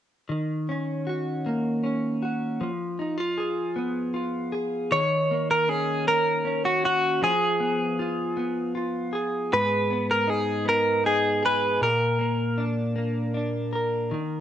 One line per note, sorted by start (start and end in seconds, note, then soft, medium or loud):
0.29 2.60 D#3 soft
0.69 1.82 C#4 soft
1.07 2.21 F#4 soft
1.46 2.68 A#3 soft
1.83 2.68 C#4 soft
2.22 2.68 F#4 soft
2.60 4.91 F3 medium
2.99 3.17 D#4 soft
3.17 4.13 F4 soft
3.37 4.51 G#4 soft
3.76 4.98 B3 soft
4.14 4.98 F4 soft
4.52 4.98 G#4 soft
4.91 7.21 D#3 medium
4.91 5.50 C#5 medium
5.31 6.06 A#3 soft
5.51 5.69 A#4 medium
5.68 6.44 C#4 soft
5.68 6.08 G#4 medium
6.07 7.30 A#3 soft
6.07 6.65 A#4 medium
6.45 7.30 C#4 soft
6.65 6.83 F#4 medium
6.84 7.30 F#4 soft
6.84 7.23 F#4 medium
7.22 9.51 F3 medium
7.22 8.72 G#4 medium
7.60 8.36 B3 soft
7.99 8.74 F4 soft
8.37 9.90 B3 soft
8.75 9.59 F4 soft
9.13 10.27 G#4 soft
9.52 11.81 G#2 medium
9.52 10.05 B4 medium
9.90 10.64 B3 soft
10.11 10.30 A#4 medium
10.27 11.03 D#4 soft
10.27 10.67 G#4 medium
10.65 11.88 B3 soft
10.65 11.03 A#4 medium
11.04 11.88 D#4 soft
11.04 11.45 G#4 medium
11.43 11.88 G#4 soft
11.43 11.83 B4 medium
11.81 14.12 A#2 medium
11.81 12.64 A#4 medium
12.19 12.95 A#3 soft
12.58 13.33 D4 soft
12.96 14.40 A#3 soft
13.34 14.19 D4 soft
13.73 14.40 A#4 soft
14.11 14.40 D#3 medium